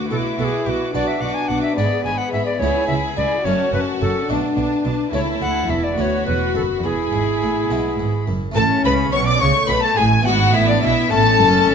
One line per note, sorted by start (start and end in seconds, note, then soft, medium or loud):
0.11 0.19 B1 soft
0.11 0.36 B2 soft
0.11 0.19 B2 soft
0.11 0.92 E4 medium
0.11 0.37 F#4 soft
0.11 0.17 A4 medium
0.11 0.37 D6 soft
0.38 0.47 B1 soft
0.38 0.47 B2 soft
0.38 0.64 B2 soft
0.38 0.66 F#4 soft
0.38 0.45 A4 medium
0.38 0.64 D6 soft
0.44 0.67 G#4 medium
0.66 0.75 B1 soft
0.66 0.91 B2 soft
0.66 0.75 B2 soft
0.66 0.93 F#4 soft
0.66 0.71 G4 medium
0.66 0.93 D6 soft
0.70 0.94 F#4 medium
0.94 1.03 B1 medium
0.94 1.02 B2 soft
0.94 1.20 B2 soft
0.94 1.55 B3 soft
0.94 1.76 D4 medium
0.94 1.55 D4 soft
0.94 1.21 F#4 soft
0.94 1.55 F#4 soft
0.94 1.09 D5 medium
0.94 1.20 D6 soft
1.08 1.22 E5 medium
1.21 1.31 B1 soft
1.21 1.30 B2 soft
1.21 1.48 B2 soft
1.21 1.49 F#4 soft
1.21 1.36 F#5 medium
1.21 1.49 D6 soft
1.34 1.50 G#5 medium
1.48 1.58 B1 soft
1.48 1.58 B2 medium
1.48 1.75 B2 soft
1.48 1.77 F#4 soft
1.48 1.62 F#5 medium
1.48 1.77 D6 soft
1.62 1.76 E5 medium
1.76 1.86 G#1 medium
1.76 1.85 G#2 medium
1.76 2.03 G#2 soft
1.76 2.61 B3 medium
1.76 2.58 B3 soft
1.76 2.58 D4 soft
1.76 2.05 G#4 soft
1.76 2.58 G#4 soft
1.76 2.04 D5 medium
1.76 2.04 B5 soft
2.04 2.14 G#1 soft
2.04 2.13 G#2 soft
2.04 2.31 G#2 soft
2.04 2.32 G#4 soft
2.04 2.19 G#5 medium
2.04 2.31 B5 soft
2.18 2.32 F#5 medium
2.32 2.42 G#1 soft
2.32 2.41 G#2 soft
2.32 2.59 G#2 soft
2.32 2.61 G#4 soft
2.32 2.45 E5 medium
2.32 2.60 B5 soft
2.46 2.61 D5 medium
2.59 2.69 C#2 soft
2.59 2.70 C#2 medium
2.59 2.87 C#2 medium
2.59 3.42 B3 soft
2.59 2.88 E4 medium
2.59 3.42 E4 soft
2.59 3.44 G#4 medium
2.59 2.87 C#5 medium
2.59 2.87 B5 soft
2.64 3.42 G#4 soft
2.87 2.97 C#2 soft
2.87 3.15 C#2 soft
2.87 2.98 C#2 soft
2.87 3.16 E4 soft
2.87 2.94 E5 medium
2.87 3.15 B5 soft
3.17 3.25 C#2 medium
3.17 3.42 C#2 soft
3.17 3.26 C#2 soft
3.17 3.45 E4 soft
3.17 3.46 D5 medium
3.17 3.44 B5 soft
3.44 3.53 F#1 medium
3.44 3.53 F#2 medium
3.44 3.70 F#2 soft
3.44 4.25 A3 soft
3.44 3.72 C#4 medium
3.44 4.26 C#4 soft
3.44 4.27 F#4 medium
3.44 4.26 F#4 soft
3.44 3.73 C#5 medium
3.44 3.71 A5 medium
3.72 3.81 F#1 soft
3.72 3.80 F#2 soft
3.72 3.99 F#2 soft
3.72 3.99 C#4 soft
3.72 3.80 B4 medium
3.72 3.99 A5 soft
4.00 4.09 F#1 soft
4.00 4.08 F#2 medium
4.00 4.26 F#2 soft
4.00 4.28 C#4 soft
4.00 4.29 A4 medium
4.00 4.27 A5 soft
4.28 4.37 B1 medium
4.28 4.37 B2 soft
4.28 4.54 B2 medium
4.28 5.09 A3 soft
4.28 5.13 D4 medium
4.28 4.55 D4 medium
4.28 5.09 D4 soft
4.28 5.10 F#4 soft
4.28 4.55 A5 soft
4.56 4.66 B1 medium
4.56 4.65 B2 soft
4.56 4.82 B2 soft
4.56 4.83 D4 soft
4.56 4.83 A5 soft
4.84 4.93 B1 soft
4.84 4.93 B2 soft
4.84 5.10 B2 soft
4.84 5.12 D4 soft
4.84 5.10 A5 soft
5.11 5.39 C#2 medium
5.11 5.39 C#2 soft
5.11 5.39 C#2 medium
5.11 5.94 A3 soft
5.11 5.96 E4 medium
5.11 5.94 E4 soft
5.11 5.95 A4 soft
5.11 5.20 C#5 medium
5.11 5.93 A5 medium
5.41 5.68 D2 soft
5.41 5.68 D2 medium
5.41 5.67 D2 soft
5.41 5.71 F#5 medium
5.69 5.96 E1 medium
5.69 5.96 E2 soft
5.69 5.95 E2 soft
5.69 5.85 E5 medium
5.84 5.97 D5 medium
5.97 6.24 D2 soft
5.97 6.25 D2 medium
5.97 6.24 A3 soft
5.97 6.80 B3 soft
5.97 6.84 F#4 soft
5.97 6.83 F#4 medium
5.97 6.80 F#4 soft
5.97 6.26 C#5 medium
5.97 6.02 D5 medium
5.97 6.82 B5 soft
6.26 6.53 E1 soft
6.26 6.53 E2 soft
6.26 6.52 E2 soft
6.26 6.55 B4 medium
6.55 6.82 F#1 soft
6.55 6.82 F#2 soft
6.55 6.81 F#2 soft
6.55 6.62 A4 medium
6.83 7.11 E1 soft
6.83 7.10 E2 medium
6.83 7.10 E2 soft
6.83 8.36 E4 soft
6.83 8.25 G#4 medium
6.83 8.13 G#4 medium
6.83 8.32 B5 soft
7.12 7.40 G#1 soft
7.12 7.39 G#2 soft
7.41 7.68 A1 soft
7.41 7.68 A2 soft
7.69 7.97 B1 medium
7.69 7.96 B2 soft
7.69 8.12 G#3 soft
7.69 8.12 B3 soft
7.69 8.33 E4 soft
7.98 8.26 G#1 soft
7.98 8.25 G#2 soft
8.28 8.54 F#1 soft
8.28 8.54 F#2 medium
8.28 8.53 F#2 soft
8.52 10.19 A3 medium
8.52 10.20 C#4 medium
8.52 10.21 E4 soft
8.52 8.63 A4 medium
8.52 8.63 A5 medium
8.56 8.65 A1 medium
8.56 8.64 A2 medium
8.56 8.82 A2 medium
8.56 9.37 C#4 medium
8.56 8.83 A5 medium
8.84 9.12 C#2 medium
8.84 9.12 C#3 medium
8.84 9.10 C#3 medium
8.84 8.92 B4 medium
8.84 8.92 B5 medium
8.84 9.14 B5 medium
9.12 9.40 B1 medium
9.12 9.40 B2 medium
9.12 9.38 B2 medium
9.12 9.18 C#5 medium
9.12 9.25 C#6 medium
9.12 9.26 C#6 loud
9.26 9.40 D5 medium
9.26 9.39 D6 medium
9.26 9.41 D6 medium
9.40 9.49 C#2 medium
9.40 9.49 C#3 medium
9.40 9.66 C#3 medium
9.40 10.26 A3 medium
9.40 9.68 C#5 medium
9.40 9.68 C#6 medium
9.40 9.69 C#6 medium
9.69 9.78 B1 medium
9.69 9.77 B2 medium
9.69 9.94 B2 medium
9.69 9.83 B4 medium
9.69 9.83 B5 medium
9.69 9.82 B5 medium
9.82 9.88 A4 medium
9.82 9.97 A5 medium
9.82 9.99 A5 medium
9.96 10.25 A1 medium
9.96 10.25 A2 medium
9.96 10.23 A2 medium
9.96 10.04 G#4 medium
9.96 10.24 G#5 medium
9.96 10.27 G#5 medium
10.21 10.53 G#2 medium
10.21 11.07 B3 medium
10.21 11.07 E4 medium
10.21 10.53 F#4 medium
10.21 10.54 F#5 medium
10.26 10.54 G#1 medium
10.26 10.51 G#2 medium
10.26 11.10 B3 medium
10.26 10.54 F#5 loud
10.53 10.83 A1 medium
10.53 10.82 A2 medium
10.53 10.80 A2 medium
10.53 10.68 E4 medium
10.53 10.67 E5 medium
10.53 10.68 E5 medium
10.68 10.82 D4 medium
10.68 10.82 D5 medium
10.68 10.83 D5 medium
10.82 10.92 B1 medium
10.82 10.91 B2 medium
10.82 11.09 B2 medium
10.82 11.11 E4 medium
10.82 11.12 E5 medium
10.82 11.12 E5 loud
11.08 11.39 A2 medium
11.08 11.75 A3 medium
11.08 11.75 C#4 medium
11.08 11.75 E4 medium
11.08 11.75 A5 medium
11.12 11.40 A1 medium
11.12 11.37 A2 medium
11.12 11.75 A4 medium
11.12 11.75 A5 loud
11.40 11.68 F#1 medium
11.40 11.68 F#2 medium
11.40 11.66 F#2 medium
11.68 11.75 G#1 medium
11.68 11.75 G#2 medium